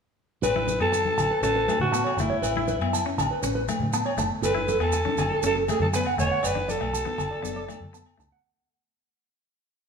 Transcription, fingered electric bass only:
0.42 0.77 A1 medium
0.80 1.03 F#2 medium
1.17 1.29 A1 medium
1.42 1.65 A1 medium
1.79 2.02 A2 medium
2.17 2.29 F#1 medium
2.42 2.76 A1 medium
2.79 3.02 F#2 medium
3.17 3.29 A1 medium
3.43 3.66 A1 medium
3.79 4.03 A2 medium
4.17 4.29 F#1 medium
4.41 4.76 F#1 medium
4.79 5.03 E2 medium
5.17 5.29 F#1 medium
5.42 5.65 F#1 medium
5.79 6.03 F#2 medium
6.17 6.29 E1 medium
6.43 6.77 F#1 medium
6.81 7.04 B1 medium
7.18 7.29 F#1 medium
7.43 7.66 F#1 medium
7.80 8.03 F#2 medium
8.18 8.30 C#2 medium

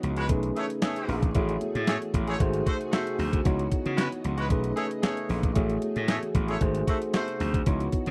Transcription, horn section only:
0.17 0.25 G#3 loud
0.17 0.25 F#4 medium
0.17 0.25 B4 loud
0.56 0.65 A3 loud
0.56 0.65 G#4 medium
0.56 0.65 C#5 loud
0.83 1.21 A3 loud
0.83 1.21 G#4 loud
0.83 1.21 C#5 loud
1.87 1.96 A3 medium
1.87 1.96 G#4 loud
1.87 1.96 C#5 loud
2.28 2.36 A3 loud
2.28 2.36 G#4 medium
2.28 2.36 C#5 loud
2.66 2.76 A3 medium
2.66 2.75 F#4 loud
2.66 2.75 C5 loud
2.92 3.31 A3 loud
2.92 3.31 F#4 loud
2.92 3.31 C5 loud
3.97 4.06 G#3 loud
3.97 4.06 F#4 loud
3.97 4.07 B4 loud
4.38 4.46 G#3 medium
4.38 4.46 F#4 loud
4.38 4.46 B4 loud
4.76 4.85 A3 loud
4.76 4.86 G#4 loud
4.76 4.85 C#5 loud
5.03 5.41 A3 loud
5.03 5.41 G#4 medium
5.03 5.41 C#5 loud
6.08 6.18 A3 medium
6.08 6.17 G#4 loud
6.08 6.17 C#5 loud
6.49 6.57 A3 medium
6.49 6.57 G#4 loud
6.49 6.57 C#5 loud
6.87 6.96 A3 loud
6.87 6.96 F#4 loud
6.87 6.96 C5 loud
7.14 7.52 A3 loud
7.14 7.52 F#4 loud
7.14 7.52 C5 loud

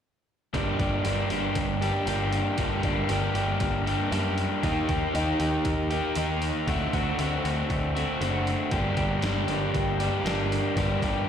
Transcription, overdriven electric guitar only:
0.53 1.04 G2 medium
0.53 1.04 D3 medium
0.53 0.81 G3 medium
0.53 0.80 A#3 medium
0.53 0.80 D4 medium
0.53 0.79 G4 medium
0.80 1.05 G3 soft
0.80 1.06 A#3 medium
0.80 1.06 D4 medium
0.80 1.06 G4 medium
1.05 2.57 G2 medium
1.05 1.56 D3 medium
1.05 1.32 G3 medium
1.05 1.32 A#3 medium
1.05 1.31 D4 medium
1.05 1.30 G4 medium
1.30 1.83 G3 soft
1.30 1.82 A#3 soft
1.30 1.80 D4 medium
1.30 1.81 G4 medium
1.81 2.06 G3 soft
1.81 2.07 A#3 soft
1.81 2.07 D4 medium
1.81 2.08 G4 medium
2.07 2.58 G3 medium
2.07 2.59 A#3 medium
2.07 2.58 D4 medium
2.07 2.60 G4 medium
2.58 3.08 G2 medium
2.58 3.09 D3 medium
2.58 2.86 G3 medium
2.58 2.85 A#3 medium
2.58 2.83 D4 medium
2.58 2.83 G4 medium
2.83 3.10 G3 medium
2.83 3.11 A#3 medium
2.83 3.10 D4 medium
2.83 3.11 G4 medium
3.09 3.61 G2 medium
3.09 3.61 D3 medium
3.09 3.36 G3 medium
3.09 3.36 A#3 medium
3.09 3.34 D4 medium
3.09 3.34 G4 medium
3.35 3.87 G3 soft
3.35 3.87 A#3 medium
3.35 3.86 D4 medium
3.35 3.85 G4 medium
3.87 4.11 G3 soft
3.87 4.12 A#3 medium
3.87 4.12 D4 medium
3.87 4.13 G4 medium
4.12 4.62 G3 medium
4.12 4.62 A#3 medium
4.12 4.62 D4 medium
4.12 4.63 G4 medium
4.63 5.12 D#3 medium
4.63 4.90 A#3 medium
4.63 4.88 D#4 medium
4.63 4.88 G4 medium
4.89 5.13 A#3 soft
4.89 5.14 D#4 medium
4.89 5.15 G4 medium
5.14 5.65 D#3 medium
5.14 5.40 A#3 medium
5.14 5.39 D#4 medium
5.14 5.38 G4 medium
5.39 5.91 A#3 soft
5.39 5.90 D#4 soft
5.39 5.89 G4 medium
5.90 6.16 A#3 medium
5.90 6.17 D#4 medium
5.90 6.17 G4 medium
6.17 6.66 D#3 medium
6.17 6.67 A#3 medium
6.17 6.67 D#4 medium
6.17 6.67 G4 medium
6.67 7.18 D3 medium
6.67 6.94 A3 medium
6.67 6.93 C4 medium
6.67 6.92 F#4 medium
6.93 7.18 A3 soft
6.93 7.19 C4 medium
6.93 7.20 F#4 medium
7.19 7.70 D3 medium
7.19 7.45 A3 medium
7.19 7.44 C4 medium
7.19 7.43 F#4 medium
7.44 7.96 A3 soft
7.44 7.96 C4 medium
7.44 7.94 F#4 medium
7.95 8.20 A3 soft
7.95 8.21 C4 soft
7.95 8.22 F#4 medium
8.21 8.71 D3 medium
8.21 8.71 A3 medium
8.21 8.71 C4 medium
8.21 8.72 F#4 medium
8.71 9.22 G2 medium
8.71 9.23 D3 medium
8.71 8.99 G3 medium
8.71 8.98 A#3 medium
8.71 8.97 D4 medium
8.71 8.97 G4 medium
8.97 9.24 G3 soft
8.97 9.24 A#3 soft
8.97 9.25 D4 medium
8.97 9.25 G4 medium
9.23 10.76 G2 medium
9.23 9.75 D3 medium
9.23 9.51 G3 medium
9.23 9.50 A#3 medium
9.23 9.49 D4 medium
9.23 9.48 G4 medium
9.49 10.01 G3 medium
9.49 10.01 A#3 medium
9.49 9.99 D4 medium
9.49 9.99 G4 medium
9.99 10.25 G3 medium
9.99 10.25 A#3 medium
9.99 10.25 D4 medium
9.99 10.27 G4 medium
10.25 10.78 G3 medium
10.25 10.78 A#3 medium
10.25 10.77 D4 medium
10.25 10.79 G4 medium
10.77 11.27 G2 medium
10.77 11.27 D3 medium
10.77 11.05 G3 medium
10.77 11.04 A#3 medium
10.77 11.03 D4 medium
10.77 11.03 G4 medium
11.03 11.28 G3 medium
11.03 11.29 A#3 medium
11.03 11.28 D4 medium
11.03 11.29 G4 medium

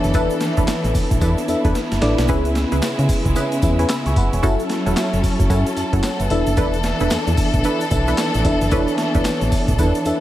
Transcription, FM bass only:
0.04 0.13 F#1 loud
0.14 0.28 E1 loud
0.57 0.66 E1 medium
0.84 0.93 A1 medium
1.11 1.20 A1 medium
1.22 1.35 E2 loud
1.49 1.55 E2 medium
1.65 1.73 E2 loud
1.92 2.01 F#1 medium
2.02 2.16 A1 loud
2.18 2.30 B1 loud
2.29 2.65 C#2 loud
2.72 2.81 C#2 medium
2.99 3.08 C#3 loud
3.25 3.34 C#2 medium
3.63 3.85 E2 loud
4.06 4.15 C#2 medium
4.16 4.30 F#1 loud
4.33 4.41 E1 loud
4.43 4.57 F#1 loud
4.86 4.95 E1 medium
5.13 5.22 F#1 medium
5.40 5.48 F#1 loud
5.50 5.64 F#2 loud
5.77 5.83 F#2 soft
5.93 6.02 F#2 loud
6.20 6.29 F#1 medium
6.30 6.44 E1 loud
6.47 6.55 F#1 medium
6.57 6.94 E1 loud
7.00 7.09 E1 loud
7.11 7.17 E2 medium
7.27 7.36 E2 loud
7.54 7.63 A1 medium
7.91 8.14 B1 loud
8.35 8.43 A1 medium
8.45 8.59 E1 medium
8.61 8.70 F#1 medium
8.72 8.86 E1 loud
9.15 9.24 E1 loud
9.42 9.50 A1 medium
9.68 9.77 A1 medium
9.79 9.93 E2 loud
10.06 10.12 E2 soft

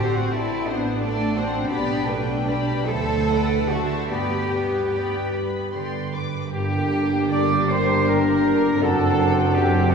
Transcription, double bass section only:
0.00 0.55 A1 soft
0.67 1.58 A1 medium
1.70 2.75 B1 medium
2.89 3.96 D2 medium
4.11 5.19 G2 soft
5.33 6.40 G2 soft
6.54 8.78 G1 soft
8.82 9.95 F#1 medium

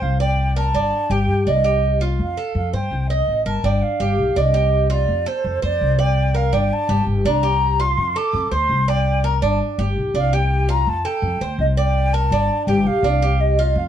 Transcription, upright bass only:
0.02 0.71 C2 loud
0.74 0.91 G1 medium
1.10 1.27 G1 loud
1.28 1.46 G2 medium
1.46 2.15 C2 loud
2.19 2.36 F2 medium
2.55 2.72 F2 loud
2.73 2.90 G2 medium
2.91 3.26 C2 medium
3.28 3.44 A1 medium
3.46 3.62 G1 medium
3.64 3.81 G1 loud
4.00 4.17 G1 loud
4.18 4.35 B1 medium
4.36 5.05 C2 medium
5.08 5.25 F2 loud
5.44 5.62 F2 loud
5.63 5.80 F2 medium
5.81 6.49 C2 loud
6.53 6.70 G1 loud
6.89 7.06 G1 loud
7.07 7.24 G1 medium
7.25 7.94 C2 loud
7.97 8.14 F2 loud
8.33 8.51 F2 loud
8.51 8.68 D2 medium
8.69 9.38 C2 loud
9.42 9.59 G1 loud
9.78 9.95 G1 loud
9.96 10.13 B1 medium
10.14 10.83 C2 medium
10.87 11.04 F2 loud
11.22 11.40 F2 loud
11.40 11.58 D2 medium
11.59 12.27 C2 loud
12.31 12.48 G1 loud
12.67 12.84 G1 loud
12.85 13.02 B1 medium
13.03 13.72 C2 loud
13.75 13.88 F2 loud

